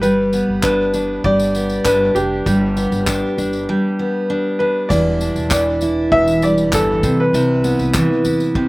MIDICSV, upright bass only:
0, 0, Header, 1, 2, 480
1, 0, Start_track
1, 0, Tempo, 609137
1, 20, Time_signature, 4, 2, 24, 8
1, 6843, End_track
2, 0, Start_track
2, 0, Title_t, "Upright bass"
2, 0, Program_c, 0, 32
2, 0, Note_on_c, 0, 31, 85
2, 348, Note_off_c, 0, 31, 0
2, 380, Note_on_c, 0, 31, 77
2, 951, Note_off_c, 0, 31, 0
2, 978, Note_on_c, 0, 31, 94
2, 1428, Note_off_c, 0, 31, 0
2, 1458, Note_on_c, 0, 31, 90
2, 1680, Note_off_c, 0, 31, 0
2, 1697, Note_on_c, 0, 29, 82
2, 1920, Note_off_c, 0, 29, 0
2, 1940, Note_on_c, 0, 31, 109
2, 2272, Note_off_c, 0, 31, 0
2, 2298, Note_on_c, 0, 31, 94
2, 2521, Note_off_c, 0, 31, 0
2, 2661, Note_on_c, 0, 31, 91
2, 2882, Note_off_c, 0, 31, 0
2, 3861, Note_on_c, 0, 28, 109
2, 4193, Note_off_c, 0, 28, 0
2, 4220, Note_on_c, 0, 28, 89
2, 4791, Note_off_c, 0, 28, 0
2, 4820, Note_on_c, 0, 28, 98
2, 5300, Note_off_c, 0, 28, 0
2, 5300, Note_on_c, 0, 31, 81
2, 5522, Note_off_c, 0, 31, 0
2, 5541, Note_on_c, 0, 36, 85
2, 5762, Note_off_c, 0, 36, 0
2, 5777, Note_on_c, 0, 36, 95
2, 6110, Note_off_c, 0, 36, 0
2, 6140, Note_on_c, 0, 36, 81
2, 6361, Note_off_c, 0, 36, 0
2, 6499, Note_on_c, 0, 40, 86
2, 6843, Note_off_c, 0, 40, 0
2, 6843, End_track
0, 0, End_of_file